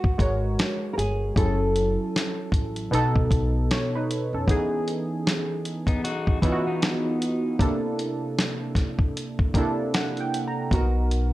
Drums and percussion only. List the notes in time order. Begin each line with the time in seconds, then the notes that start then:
0.04 kick
0.19 kick, closed hi-hat
0.59 snare, closed hi-hat
0.99 closed hi-hat
1.36 kick, closed hi-hat
1.76 closed hi-hat
2.16 snare, closed hi-hat
2.52 kick, closed hi-hat
2.76 closed hi-hat
2.94 closed hi-hat
3.16 kick
3.31 kick, closed hi-hat
3.71 snare, closed hi-hat
4.11 closed hi-hat
4.48 kick, closed hi-hat
4.88 closed hi-hat
5.27 snare, closed hi-hat
5.65 closed hi-hat
5.87 kick, closed hi-hat
6.05 closed hi-hat
6.27 kick
6.42 kick, closed hi-hat
6.82 snare, closed hi-hat
7.22 closed hi-hat
7.59 kick, closed hi-hat
7.99 closed hi-hat
8.39 snare, closed hi-hat
8.75 kick, snare, closed hi-hat
8.99 kick
9.17 closed hi-hat
9.39 kick
9.54 kick, closed hi-hat
9.94 snare, closed hi-hat
10.17 closed hi-hat
10.34 closed hi-hat
10.71 kick, closed hi-hat
11.11 closed hi-hat